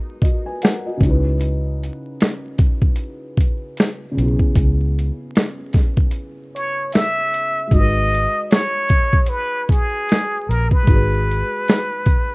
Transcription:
Already playing: G#3 D#4 F#4 A#4 B4
0.22 F#4 D#5, kick, closed hi-hat
0.46 B4 G#5
0.62 A#4 F#5, finger snap, snare, closed hi-hat
0.86 F#4 D#5
0.97 C#2 C#3 C#4, kick
1.03 D#4 E4, closed hi-hat
1.10 B4
1.41 closed hi-hat
1.84 closed hi-hat
2.21 finger snap, snare, closed hi-hat
2.58 kick, closed hi-hat
2.82 kick
2.96 closed hi-hat
3.37 kick, closed hi-hat
3.77 finger snap, snare, closed hi-hat
4.11 C#3 C#4
4.17 B1 B3 E4, closed hi-hat
4.24 G#4
4.39 kick
4.55 C#2, kick, closed hi-hat
4.99 closed hi-hat
5.35 finger snap, snare, closed hi-hat
5.73 kick, snare, closed hi-hat
5.97 kick
6.11 closed hi-hat
6.55 C#5, closed hi-hat
6.92 E5, finger snap, snare, closed hi-hat
7.34 closed hi-hat
7.67 G#3 D#4, kick
7.72 G#1 F#4 D#5, closed hi-hat
7.76 G#4 B4
8.14 closed hi-hat
8.51 C#5, finger snap, snare, closed hi-hat
8.89 kick, closed hi-hat
9.13 kick
9.26 B4, closed hi-hat
9.69 G#4, kick, closed hi-hat
10.09 finger snap, snare, closed hi-hat
10.49 A#1 A#4, closed hi-hat
10.71 B4, kick
10.83 G#3 D#4
10.87 G#1 F#4, kick, closed hi-hat
10.92 G#4 B4
11.31 closed hi-hat
11.68 finger snap, snare, closed hi-hat
12.06 kick, closed hi-hat

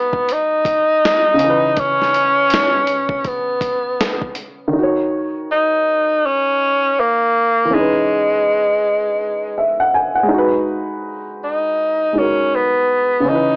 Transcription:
Already playing: G#3 B3 D#4 F#4 B4 E5
0.13 kick
0.28 D#4, closed hi-hat
0.65 kick, closed hi-hat
1.05 snare, closed hi-hat
1.34 C#3
1.39 C#4, closed hi-hat
1.44 E3
1.49 B4
1.77 C#4, kick, closed hi-hat
2.02 snare
2.14 closed hi-hat
2.50 snare, closed hi-hat
2.87 closed hi-hat
3.09 kick
3.25 B3, kick, closed hi-hat
3.61 kick, closed hi-hat
4.01 snare, closed hi-hat
4.22 kick
4.35 closed hi-hat
4.68 D#3
4.73 D#4
4.78 F#4
4.83 C#5
5.51 D#4
6.26 C#4
7.00 A#3
7.65 E3
7.70 G#3 C#4
7.75 D#4
7.80 B4
9.58 E5
9.80 F#5
9.94 G#5
10.15 F#5
10.23 G#3
10.28 D#4
10.33 F#4
10.38 B4
11.44 D#4
12.13 G#3 D#4
12.17 C#4 F#4 A#4
12.55 B3
13.20 C#3
13.25 C#4 D#4
13.30 E3
13.35 B4

